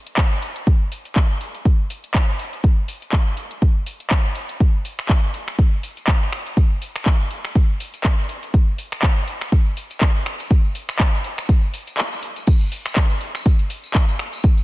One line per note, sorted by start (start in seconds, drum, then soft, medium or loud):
0.07 closed hi-hat medium
0.07 tambourine medium
0.17 kick loud
0.17 clap loud
0.17 closed hi-hat medium
0.42 open hi-hat medium
0.56 closed hi-hat medium
0.67 kick loud
0.67 closed hi-hat soft
0.92 open hi-hat loud
1.05 closed hi-hat medium
1.05 tambourine medium
1.16 kick loud
1.16 clap loud
1.16 closed hi-hat soft
1.41 open hi-hat medium
1.54 closed hi-hat medium
1.54 tambourine medium
1.65 kick loud
1.65 closed hi-hat soft
1.78 tambourine soft
1.90 open hi-hat loud
2.03 closed hi-hat medium
2.03 tambourine medium
2.15 kick loud
2.15 clap loud
2.15 closed hi-hat medium
2.39 open hi-hat medium
2.53 closed hi-hat medium
2.53 tambourine medium
2.64 kick loud
2.64 closed hi-hat soft
2.78 tambourine soft
2.88 open hi-hat loud
3.02 closed hi-hat medium
3.02 tambourine medium
3.12 kick loud
3.12 clap loud
3.12 closed hi-hat soft
3.37 open hi-hat medium
3.51 closed hi-hat medium
3.51 tambourine medium
3.62 kick loud
3.62 closed hi-hat soft
3.75 tambourine soft
3.86 open hi-hat loud
4.00 closed hi-hat medium
4.00 tambourine medium
4.10 kick loud
4.10 clap loud
4.10 closed hi-hat soft
4.35 open hi-hat medium
4.49 closed hi-hat medium
4.49 tambourine medium
4.60 kick loud
4.60 closed hi-hat soft
4.75 tambourine soft
4.85 open hi-hat loud
4.99 finger snap medium
4.99 closed hi-hat medium
4.99 tambourine medium
5.09 kick loud
5.09 clap loud
5.09 closed hi-hat medium
5.24 tambourine soft
5.34 open hi-hat medium
5.48 finger snap medium
5.48 closed hi-hat medium
5.48 tambourine medium
5.59 kick loud
5.59 closed hi-hat soft
5.73 tambourine soft
5.83 open hi-hat loud
5.97 closed hi-hat medium
5.97 tambourine medium
6.07 kick loud
6.07 clap loud
6.07 closed hi-hat soft
6.23 tambourine soft
6.33 finger snap medium
6.33 open hi-hat medium
6.47 closed hi-hat medium
6.47 tambourine medium
6.57 kick loud
6.57 closed hi-hat medium
6.57 tambourine medium
6.71 tambourine soft
6.82 open hi-hat loud
6.95 finger snap medium
6.95 closed hi-hat medium
6.95 tambourine medium
7.06 kick loud
7.06 clap loud
7.06 closed hi-hat soft
7.21 tambourine soft
7.31 open hi-hat medium
7.44 finger snap medium
7.44 closed hi-hat medium
7.44 tambourine medium
7.55 kick loud
7.55 closed hi-hat soft
7.55 tambourine medium
7.70 tambourine soft
7.80 open hi-hat loud
7.94 closed hi-hat medium
7.94 tambourine medium
8.04 kick loud
8.04 clap loud
8.04 closed hi-hat medium
8.19 tambourine soft
8.29 open hi-hat medium
8.42 closed hi-hat medium
8.42 tambourine medium
8.54 kick loud
8.54 closed hi-hat medium
8.54 tambourine medium
8.68 tambourine soft
8.78 open hi-hat loud
8.92 finger snap medium
8.92 closed hi-hat medium
8.92 tambourine medium
9.02 kick loud
9.02 clap loud
9.02 closed hi-hat medium
9.16 tambourine soft
9.28 open hi-hat medium
9.41 finger snap medium
9.41 closed hi-hat medium
9.41 tambourine medium
9.52 kick loud
9.52 closed hi-hat medium
9.52 tambourine medium
9.66 tambourine soft
9.77 open hi-hat loud
9.90 closed hi-hat medium
9.90 tambourine medium
10.01 kick loud
10.01 clap loud
10.01 closed hi-hat medium
10.15 tambourine soft
10.26 finger snap medium
10.26 open hi-hat medium
10.39 closed hi-hat medium
10.39 tambourine medium
10.50 kick loud
10.50 closed hi-hat medium
10.50 tambourine medium
10.65 tambourine soft
10.75 open hi-hat loud
10.89 finger snap medium
10.89 closed hi-hat medium
10.89 tambourine medium
10.99 kick loud
10.99 clap loud
10.99 closed hi-hat medium
11.13 tambourine soft
11.24 open hi-hat medium
11.37 finger snap medium
11.37 closed hi-hat medium
11.37 tambourine medium
11.49 kick loud
11.49 closed hi-hat medium
11.49 tambourine medium
11.62 tambourine soft
11.74 open hi-hat loud
11.87 closed hi-hat medium
11.87 tambourine medium
11.98 clap loud
11.98 closed hi-hat medium
11.98 tambourine medium
12.12 tambourine soft
12.23 open hi-hat medium
12.36 closed hi-hat medium
12.36 tambourine medium
12.47 kick loud
12.47 closed hi-hat medium
12.47 crash loud
12.47 tambourine medium
12.61 closed hi-hat soft
12.61 tambourine soft
12.72 open hi-hat loud
12.86 finger snap medium
12.86 tambourine medium
12.96 kick loud
12.96 clap loud
12.96 closed hi-hat medium
12.96 tambourine medium
13.10 closed hi-hat medium
13.10 tambourine soft
13.21 open hi-hat medium
13.35 finger snap medium
13.35 closed hi-hat soft
13.35 tambourine medium
13.45 kick loud
13.45 closed hi-hat medium
13.45 tambourine medium
13.59 closed hi-hat soft
13.59 tambourine soft
13.70 open hi-hat loud
13.83 tambourine medium
13.94 kick loud
13.94 clap loud
13.94 closed hi-hat medium
13.94 tambourine medium
14.08 tambourine soft
14.19 finger snap medium
14.19 open hi-hat medium
14.33 closed hi-hat medium
14.33 tambourine medium
14.44 kick loud
14.44 closed hi-hat medium
14.44 tambourine medium
14.58 closed hi-hat soft
14.58 tambourine soft